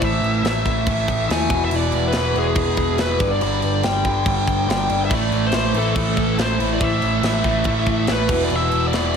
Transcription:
0.01 picked electric bass A1, distorted electric guitar A2 E3 A3, lead electric guitar E5, kick, crash
0.22 picked electric bass A1, crash
0.44 picked electric bass A1, distorted electric guitar A2 E3 A3, lead electric guitar E5, snare, crash
0.65 picked electric bass A1, distorted electric guitar A2 E3 A3, kick, crash
0.87 picked electric bass A1, distorted electric guitar A2 E3 A3, kick, crash
1.08 kick, crash
1.29 picked electric bass D#2, distorted electric guitar A2 E3 A3, lead electric guitar G#5, snare, crash
1.49 picked electric bass E1, distorted electric guitar E2 B2 E3, kick, crash
1.65 lead electric guitar E5
1.71 picked electric bass E1, distorted electric guitar E2 B2 E3, crash
1.76 lead electric guitar D5
1.92 picked electric bass E1, crash
2.08 lead electric guitar B4
2.12 picked electric bass E1, distorted electric guitar E2 B2 E3, snare, crash
2.18 lead electric guitar B4
2.34 picked electric bass E1, distorted electric guitar E2 B2 E3, lead electric guitar G#4, crash
2.55 picked electric bass E1, distorted electric guitar E2 B2 E3, kick, crash
2.77 kick, crash
2.98 picked electric bass E1, distorted electric guitar E2 B2 E3, lead electric guitar B4, snare, crash
3.20 picked electric bass G1, distorted electric guitar G2 D3 G3, kick, crash
3.31 lead electric guitar D5
3.41 picked electric bass G1, distorted electric guitar G2 D3 G3, lead electric guitar D5, crash
3.62 picked electric bass G1, crash
3.83 picked electric bass G1, distorted electric guitar G2 D3 G3, lead electric guitar G5, snare, crash
4.04 picked electric bass G1, distorted electric guitar G2 D3 G3, kick, crash
4.26 picked electric bass G1, distorted electric guitar G2 D3 G3, kick, crash
4.47 kick, crash
4.68 picked electric bass G1, distorted electric guitar G2 D3 G3, lead electric guitar G5, snare, crash
4.89 picked electric bass G1, distorted electric guitar G2 D3 G3, crash
5.05 lead electric guitar E5
5.11 picked electric bass A1, distorted electric guitar A2 E3 A3, kick, crash
5.15 lead electric guitar D5
5.32 picked electric bass A1, crash
5.46 lead electric guitar C5
5.52 picked electric bass A1, distorted electric guitar A2 E3 A3, lead electric guitar C5, snare, crash
5.74 picked electric bass A1, distorted electric guitar A2 E3 A3, lead electric guitar A4, crash
5.95 picked electric bass A1, distorted electric guitar A2 E3 A3, kick, crash
6.17 kick, crash
6.37 picked electric bass A1, distorted electric guitar A2 E3 A3, snare, crash
6.42 lead electric guitar C5
6.58 picked electric bass A1, distorted electric guitar A2 E3 A3, crash
6.73 lead electric guitar D5
6.80 picked electric bass A1, distorted electric guitar A2 E3 A3, lead electric guitar E5, kick, crash
7.02 picked electric bass A1, crash
7.23 picked electric bass A1, distorted electric guitar A2 E3 A3, lead electric guitar E5, snare, crash
7.44 picked electric bass A1, distorted electric guitar A2 E3 A3, kick, crash
7.64 picked electric bass A1, distorted electric guitar A2 E3 A3, kick, crash
7.86 kick, crash
8.07 picked electric bass A1, distorted electric guitar A2 E3 A3, snare, crash
8.12 lead electric guitar B4
8.29 picked electric bass E1, distorted electric guitar E2 B2 E3, kick, crash
8.44 lead electric guitar D5
8.50 picked electric bass E1, distorted electric guitar E2 B2 E3, crash
8.55 lead electric guitar E5
8.71 picked electric bass E1, crash
8.87 lead electric guitar D5
8.93 picked electric bass E1, distorted electric guitar E2 B2 E3, snare, crash

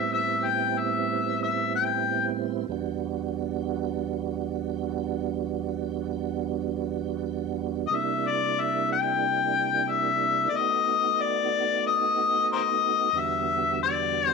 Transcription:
Already playing: tonewheel organ A2 G3 B3 C4 E4, harmonica E5
0.13 harmonica E5
0.46 harmonica G5
0.78 harmonica E5
1.43 harmonica E5
1.76 harmonica G5
2.68 tonewheel organ E2 G3 B3 D4 F#4
7.88 tonewheel organ C3 G3, harmonica D#5
7.92 tonewheel organ A#3 D4 E4, harmonica E5
8.28 harmonica D5
8.60 harmonica E5
8.92 harmonica G5
9.91 harmonica E5
10.49 tonewheel organ A3 B3, harmonica D5
10.54 tonewheel organ D#4 F#4, harmonica D#5
11.22 harmonica D5
11.87 harmonica D#5
12.53 harmonica A#4 C5 D#5
13.12 tonewheel organ E2 D3 G3 B3 F#4
13.19 harmonica E5
13.83 harmonica D5
14.28 harmonica C5

